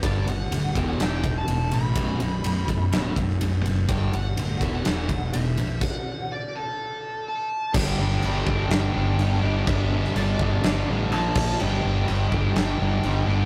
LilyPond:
<<
  \new Staff \with { instrumentName = "Lead electric guitar" } { \time 4/4 \key g \lydian \tempo 4 = 124 d''8 fis''4 g''16 fis''16 g''8. a''8. b''8~ | b''2~ b''8 r4. | g''8 fis''4 e''16 fis''4~ fis''16 e''4 | fis''4 d''8 a'4. a''4 |
g''2 g''2 | e''4 d''4. r8 a''4 | g''2 g''2 | }
  \new Staff \with { instrumentName = "Distorted electric guitar" } { \time 4/4 \key g \lydian r1 | r1 | r1 | r1 |
<g, d g b d' g'>2.~ <g, d g b d' g'>8 <g, d g b d' g'>8 | <g, d g b d' g'>2. r4 | <g, d g b d' g'>2.~ <g, d g b d' g'>8 <g, d g b d' g'>8 | }
  \new Staff \with { instrumentName = "Distorted electric guitar" } { \clef bass \time 4/4 \key g \lydian <g, d g>8 <g, d>8 <g, d>8 <e, b, e>8 <e, b, e>8 <e, b,>8 <e, b,>8 <e, b,>8 | <b,, fis, b,>8 <b,, fis,>8 <b,, fis,>8 <b,, fis,>8 <b,, fis, b,>8 <b,, fis,>8 <b,, fis,>8 <b,, fis,>8 | <g, d g>8 <g, d>8 <g, d>8 <e, b, e>8 <e, b, e>8 <e, b,>8 <e, b,>8 <e, b,>8 | r1 |
<g, d g>8 <g, d g>8 <g, d g>8 <g, d g>8 <g, d g>8 <g, d g>8 <g, d g>8 <g, d g>8 | <g, d g>8 <g, d g>8 <g, d g>8 <g, d g>8 <g, d g>8 <g, d g>8 <ais, eis ais>8 <ais, eis ais>8 | <g, d g>8 <g, d g>8 <g, d g>8 <g, d g>8 <g, d g>8 <g, d g>8 <g, d g>8 <g, d g>8 | }
  \new Staff \with { instrumentName = "Overdriven electric guitar" } { \clef bass \time 4/4 \key g \lydian <g, d g>8 <g, d>8 <g, d>8 <e, b, e>8 <e, b, e>8 <e, b,>8 <e, b,>8 <e, b,>8 | <b,, fis, b,>8 <b,, fis,>8 <b,, fis,>8 <b,, fis,>8 <b,, fis, b,>8 <b,, fis,>8 <b,, fis,>8 <b,, fis,>8 | <g, d g>8 <g, d>8 <g, d>8 <e, b, e>8 <e, b, e>8 <e, b,>8 <e, b,>8 <e, b,>8 | r1 |
<g, d g>8 <g, d g>8 <g, d g>8 <g, d g>8 <g, d g>8 <g, d g>8 <g, d g>8 <g, d g>8 | <g, d g>8 <g, d g>8 <g, d g>8 <g, d g>8 <g, d g>8 <g, d g>8 <ais, eis ais>8 <ais, eis ais>8 | <g, d g>8 <g, d g>8 <g, d g>8 <g, d g>8 <g, d g>8 <g, d g>8 <g, d g>8 <g, d g>8 | }
  \new Staff \with { instrumentName = "Fingered electric bass" } { \clef bass \time 4/4 \key g \lydian g,,8 g,,8 d,,8 e,,8 e,,4 e,,8 a,,8 | b,,,8 b,,,8 b,,,8 b,,,8 d,,8 b,,,8 b,,,8 fis,,8 | g,,8 g,,8 d,,8 e,,8 e,,4 e,,8 ais,,8 | r1 |
g,,8 g,,8 g,,8 g,,8 g,,8 g,,8 g,,8 g,,8 | g,,4 g,,8 g,,8 g,,8 a,,8 ais,,8 ais,,8 | g,,8 g,,8 g,,8 g,,8 g,,8 g,,8 g,,8 g,,8 | }
  \new DrumStaff \with { instrumentName = "Drums" } \drummode { \time 4/4 <bd cymr>8 cymr8 cymr8 <bd cymr>8 <cymr sn>8 <bd cymr>8 cymr8 cymr8 | <bd cymr>8 cymr8 cymr8 <bd cymr>8 <cymr sn>8 <bd cymr>16 sn16 cymr8 cymr8 | <bd cymr>8 cymr8 cymr8 <bd cymr>8 <cymr sn>8 <bd cymr>8 cymr8 cymr8 | <cymc bd>4 r4 r4 r4 |
<cymc bd>8. sn16 cymc8 bd8 <cymc sn>4 cymc4 | <cymc bd>8. sn16 cymc8 bd8 <cymc sn>4 cymc8 <cymc bd>8 | cymc4 cymc8 bd8 <cymc sn>4 cymc4 | }
>>